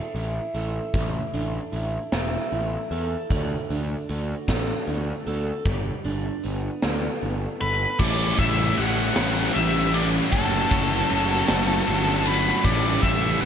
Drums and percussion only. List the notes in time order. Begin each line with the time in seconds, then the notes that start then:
0.16 closed hi-hat
0.55 closed hi-hat
0.94 kick, closed hi-hat
1.34 closed hi-hat
1.73 closed hi-hat
2.12 snare, closed hi-hat
2.52 closed hi-hat
2.91 closed hi-hat
3.30 kick, closed hi-hat
3.70 closed hi-hat
4.09 closed hi-hat
4.48 kick, snare, closed hi-hat
4.87 closed hi-hat
5.27 closed hi-hat
5.65 kick, closed hi-hat
6.05 closed hi-hat
6.44 closed hi-hat
6.82 snare, closed hi-hat
7.21 closed hi-hat
7.61 closed hi-hat
8.00 kick, crash
8.39 kick, ride
8.78 ride
9.16 snare, ride
9.55 ride
9.94 ride
10.33 kick, ride
10.71 kick, ride
11.10 ride
11.48 snare, ride
11.87 ride
12.26 ride
12.65 kick, ride
13.03 kick, ride
13.42 ride